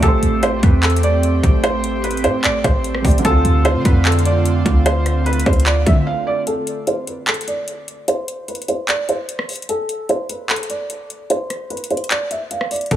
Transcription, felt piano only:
0.03 A4
0.43 C5
0.63 B4
0.83 A4
1.03 D5
1.64 C5
2.04 B4
2.24 C5
2.44 D5
2.64 C5
3.25 A4
3.65 C5
3.85 B4
4.05 A4
4.25 D5
4.86 C5
5.26 B4
5.46 C5
5.66 D5
5.87 E5
6.07 F5
6.27 D5
6.47 A4
6.87 C5
7.07 B4
7.27 A4
7.48 D5
8.08 C5
8.48 B4
8.68 C5
8.89 D5
9.09 C5
9.69 A4
10.09 C5
10.29 B4
10.50 A4
10.70 D5
11.30 C5
11.70 B4
11.91 C5
12.11 D5
12.31 E5
12.51 F5
12.71 D5
12.91 A4

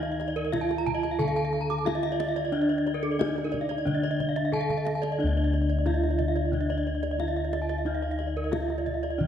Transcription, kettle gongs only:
Already playing: D#3 D#4
0.53 D#4
1.19 D3
1.87 D#4
2.52 D4
3.19 D#4
3.86 D3
4.53 D#4
5.19 D4
5.24 D2
5.86 D#4
7.19 D#4
7.85 D#4
8.53 D#4
9.21 D#3

